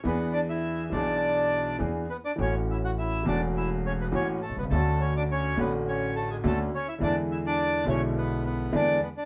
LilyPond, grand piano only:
\new Staff \with { instrumentName = "Grand piano" } { \clef bass \time 4/4 \key e \mixolydian \tempo 4 = 104 <e, e b d' gis'>4. <b,, b, e b d' gis'>4. <e, e b d' gis'>8 r8 | <a,, a, e a cis' fis'>4. <e,, e, e a cis' fis'>4. <a,, a, e a cis' fis'>8 r32 b,,32 c,32 cis,32 | <d, d a cis' fis'>4. <a,, a, d a cis' fis'>4. <d, d a cis' fis'>8 r8 | <e, d e gis b e'>4. <b,, b, d gis b e'>4. <e, d e gis b e'>8 r8 | }